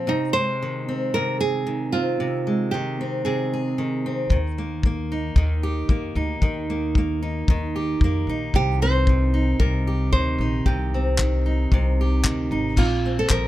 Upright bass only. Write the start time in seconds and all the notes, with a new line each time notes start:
4.30 D#2
5.36 D#2
5.89 F2
6.15 D2
6.41 D#2
7.48 D#2
8.01 F2
8.27 A#1
8.54 C2
9.60 C2
10.12 D2
10.38 A#1
10.66 C2
11.72 C2
12.24 D2
12.51 G#1
12.76 A#1
13.30 A#1